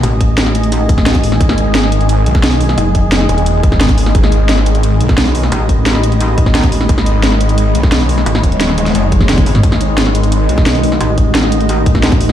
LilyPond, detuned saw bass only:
\new Staff \with { instrumentName = "Detuned saw bass" } { \clef bass \time 4/4 \key gis \phrygian \tempo 4 = 175 r1 | gis,,2~ gis,,8 b,,4. | r4. dis,,4. gis,,4 | gis,,2~ gis,,8 b,,4. |
r1 | gis,,2~ gis,,8 b,,4. | r1 | gis,,2~ gis,,8 b,,4. |
r1 | }